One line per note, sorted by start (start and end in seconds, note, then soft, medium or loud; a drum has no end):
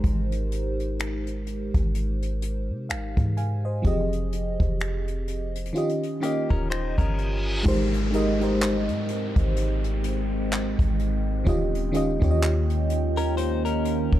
0.00 1.70 G#1 loud
0.00 1.22 G#3 medium
0.00 1.23 D#4 medium
0.00 1.23 G4 medium
0.00 1.24 A#4 medium
0.00 1.25 C5 loud
0.00 kick loud
0.00 closed hi-hat medium
0.32 closed hi-hat medium
0.52 closed hi-hat medium
0.80 closed hi-hat soft
0.99 finger snap loud
0.99 closed hi-hat medium
1.27 closed hi-hat soft
1.47 closed hi-hat medium
1.74 2.71 G#1 loud
1.74 kick medium
1.74 closed hi-hat medium
1.95 closed hi-hat medium
2.22 closed hi-hat soft
2.42 closed hi-hat medium
2.69 2.91 C3 loud
2.89 3.16 G#1 medium
2.89 3.35 F5 medium
2.89 finger snap loud
2.89 closed hi-hat medium
3.17 3.82 G#2 loud
3.17 kick medium
3.17 closed hi-hat medium
3.37 3.64 F5 medium
3.37 3.63 G#5 medium
3.37 closed hi-hat medium
3.65 4.10 C5 medium
3.65 3.86 D#5 medium
3.82 4.57 F1 loud
3.82 5.50 F3 medium
3.82 5.51 C4 medium
3.82 5.52 G4 medium
3.82 5.52 G#4 medium
3.82 kick loud
3.82 closed hi-hat medium
3.87 5.53 D#5 medium
4.13 closed hi-hat medium
4.32 closed hi-hat medium
4.60 5.71 F1 loud
4.60 kick medium
4.60 closed hi-hat soft
4.80 finger snap loud
4.80 closed hi-hat medium
5.08 closed hi-hat soft
5.27 closed hi-hat medium
5.55 closed hi-hat medium
5.65 closed hi-hat medium
5.73 6.16 D#3 medium
5.73 6.17 C#4 medium
5.73 6.17 F4 medium
5.73 6.18 G4 medium
5.73 closed hi-hat soft
5.73 reverse cymbal medium
5.78 6.19 D#5 medium
5.89 closed hi-hat soft
6.03 closed hi-hat soft
6.20 7.48 D#3 medium
6.20 6.49 A#3 medium
6.20 7.48 C#4 medium
6.20 7.49 F4 medium
6.20 6.49 G4 medium
6.20 7.49 G4 medium
6.20 closed hi-hat medium
6.25 7.50 D#5 medium
6.50 6.96 D#1 loud
6.50 6.70 C#4 medium
6.50 6.69 A#4 medium
6.50 kick medium
6.70 6.97 D#4 medium
6.70 6.97 C5 medium
6.70 finger snap loud
6.70 closed hi-hat medium
6.98 7.63 G1 loud
6.98 7.63 C#4 medium
6.98 7.62 A#4 medium
6.98 kick medium
6.98 closed hi-hat medium
7.18 closed hi-hat medium
7.63 8.90 G#1 loud
7.63 8.06 G#3 medium
7.63 11.43 G#3 medium
7.63 11.43 C4 medium
7.63 8.07 D#4 medium
7.63 8.08 G4 medium
7.63 8.08 A#4 medium
7.63 14.20 G5 medium
7.63 kick loud
7.63 crash loud
7.63 downlifter medium
7.68 8.09 C5 medium
7.94 closed hi-hat medium
8.11 8.36 G#3 medium
8.11 8.36 D#4 medium
8.11 8.37 G4 medium
8.11 8.38 A#4 medium
8.11 closed hi-hat medium
8.16 8.38 D#5 loud
8.39 10.00 G#3 medium
8.39 10.01 D#4 medium
8.39 10.01 G4 medium
8.39 10.02 A#4 medium
8.39 closed hi-hat soft
8.44 10.03 C5 medium
8.61 clap loud
8.61 closed hi-hat medium
8.88 9.34 G#2 loud
8.88 closed hi-hat soft
9.08 closed hi-hat medium
9.36 10.75 G#1 loud
9.36 kick medium
9.36 closed hi-hat medium
9.56 closed hi-hat medium
9.84 closed hi-hat medium
10.04 closed hi-hat medium
10.51 clap loud
10.51 closed hi-hat medium
10.79 11.44 G#1 loud
10.79 kick medium
10.79 closed hi-hat medium
10.99 closed hi-hat medium
11.44 12.19 D#1 loud
11.44 11.87 D#3 medium
11.44 14.20 D#3 medium
11.44 14.20 A#3 medium
11.44 11.88 C#4 medium
11.44 14.20 C#4 medium
11.44 11.89 F4 medium
11.44 14.20 F4 medium
11.44 11.89 G4 medium
11.44 kick loud
11.44 closed hi-hat medium
11.49 11.90 D#5 medium
11.75 closed hi-hat medium
11.92 12.17 D#3 medium
11.92 12.17 C#4 medium
11.92 12.18 F4 medium
11.92 12.19 G4 medium
11.92 closed hi-hat medium
11.96 12.19 D#5 loud
12.20 14.08 D#2 loud
12.20 13.81 D#3 medium
12.20 13.81 C#4 medium
12.20 13.82 F4 medium
12.20 13.83 G4 medium
12.20 kick medium
12.20 closed hi-hat soft
12.24 12.29 C#5 medium
12.31 13.87 D#5 loud
12.42 clap loud
12.42 closed hi-hat medium
12.70 closed hi-hat soft
12.90 closed hi-hat medium
13.17 13.37 C#4 medium
13.17 13.36 A#4 medium
13.17 closed hi-hat medium
13.37 13.64 D#4 medium
13.37 13.63 C5 medium
13.37 closed hi-hat medium
13.65 14.20 C#4 medium
13.65 14.20 A#4 medium
13.65 closed hi-hat medium
13.85 closed hi-hat medium
14.13 14.20 D#1 loud
14.13 kick medium